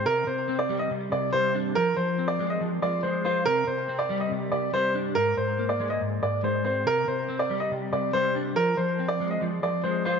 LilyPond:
<<
  \new Staff \with { instrumentName = "Grand piano" } { \time 4/4 \key f \dorian \tempo 4 = 141 bes'8 c''8. d''8 ees''16 r8 d''8 c''8 r8 | bes'8 c''8. d''8 ees''16 r8 d''8 c''8 c''8 | bes'8 c''8. d''8 ees''16 r8 d''8 c''8 r8 | bes'8 c''8. d''8 ees''16 r8 d''8 c''8 c''8 |
bes'8 c''8. d''8 ees''16 r8 d''8 c''8 r8 | bes'8 c''8. d''8 ees''16 r8 d''8 c''8 c''8 | }
  \new Staff \with { instrumentName = "Clean electric guitar" } { \clef bass \time 4/4 \key f \dorian c8 c8 c'8 g8 c8 c8 g8 d'8 | f8 f8 c'8 aes8 f8 f8 aes8 f'8 | c8 c8 c'8 g8 c8 c8 g8 d'8 | aes,8 aes,8 bes8 aes8 aes,8 aes,8 aes8 c'8 |
c8 c8 c'8 g8 c8 c8 g8 d'8 | f8 f8 c'8 aes8 f8 f8 aes8 f'8 | }
>>